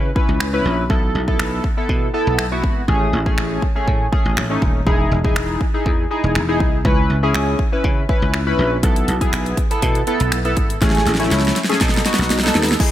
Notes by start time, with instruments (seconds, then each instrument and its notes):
Already playing: slap bass C#3
0.15 analog polysynth C#4 E4 B4, kick
0.29 slap bass C#2
0.40 slap bass C#2, finger snap
0.53 analog polysynth C#4 E4 B4
0.65 slap bass A#1
0.90 slap bass B1, analog polysynth B3 E4 A4, kick
1.15 slap bass B1
1.28 analog polysynth B3 E4 A4, kick
1.39 slap bass B1, finger snap
1.64 kick
1.77 analog polysynth B3 E4 A4
1.89 slap bass B2, kick
2.14 analog polysynth B3 E4 A4
2.27 slap bass B1
2.39 slap bass B1, finger snap
2.52 analog polysynth B3 E4 F#4
2.64 slap bass G#1, kick
2.88 slap bass A1, analog polysynth A3 C#4 G#4, kick
3.13 slap bass A1
3.26 analog polysynth A3 C#4 G#4, kick
3.38 slap bass A1, finger snap
3.62 kick
3.75 analog polysynth A3 C#4 G#4
3.88 slap bass A2, kick
4.12 analog polysynth A3 C#4 G#4, kick
4.25 slap bass A1
4.37 slap bass A1, finger snap
4.50 analog polysynth A3 C#4 D#4
4.62 slap bass D#1, kick
4.87 slap bass E1, analog polysynth D#4 E4 G#4, kick
5.11 slap bass E1
5.25 analog polysynth D#4 E4 G#4, kick
5.36 slap bass E1, finger snap
5.61 kick
5.74 analog polysynth D#4 E4 G#4
5.86 slap bass E2, kick
6.11 analog polysynth D#4 E4 G#4
6.24 slap bass E1
6.35 slap bass E1, finger snap
6.49 analog polysynth D#4 E4 G#4
6.60 slap bass C2, kick
6.85 slap bass C#2, analog polysynth C#4 E4 B4, kick
7.10 slap bass C#2
7.23 analog polysynth C#4 E4 G#4
7.34 slap bass C#2, finger snap
7.59 kick
7.72 analog polysynth C#4 E4 B4
7.84 slap bass C#3, kick
8.09 analog polysynth C#4 E4 B4, kick
8.22 slap bass C#2
8.34 slap bass C#2, finger snap
8.47 analog polysynth C#4 E4 B4
8.59 slap bass A#1
8.83 slap bass B1, analog polysynth B3 E4 A4, kick, closed hi-hat
8.96 closed hi-hat
9.08 slap bass B1, closed hi-hat
9.21 analog polysynth B3 E4 G#4, kick, closed hi-hat
9.33 slap bass B1, finger snap, closed hi-hat
9.46 closed hi-hat
9.57 kick, closed hi-hat
9.71 analog polysynth B3 E4 A4, closed hi-hat
9.82 slap bass B2, kick, closed hi-hat
9.95 closed hi-hat
10.07 analog polysynth B3 E4 A4, closed hi-hat
10.20 slap bass B1, closed hi-hat
10.32 slap bass B1, finger snap, closed hi-hat
10.45 analog polysynth B3 E4 A4, closed hi-hat
10.57 slap bass G#1, kick, closed hi-hat
10.70 closed hi-hat
10.81 slap bass A1, analog polysynth A3 C#4 G#4, kick, snare, closed hi-hat
10.90 snare
10.95 snare, closed hi-hat
11.06 slap bass A1, snare, closed hi-hat
11.15 snare
11.19 analog polysynth A3 C#4 E4, snare, closed hi-hat
11.31 slap bass C#2, snare, closed hi-hat
11.40 snare
11.45 snare, closed hi-hat
11.56 snare, closed hi-hat
11.64 snare
11.69 analog polysynth A3 C#4 G#4, snare, closed hi-hat
11.81 slap bass B2, analog polysynth B3 D#4 A4, kick, snare, closed hi-hat
11.89 snare
11.94 snare, closed hi-hat
12.05 analog polysynth B3 D#4 F#4, snare, closed hi-hat
12.14 snare
12.18 slap bass B1, snare, closed hi-hat
12.30 slap bass B1, snare, closed hi-hat
12.39 snare
12.43 analog polysynth B3 D#4 A4, snare, closed hi-hat
12.55 slap bass D#2, snare, closed hi-hat
12.63 snare
12.68 snare, closed hi-hat
12.80 analog polysynth D#4 E4 G#4, kick, snare, crash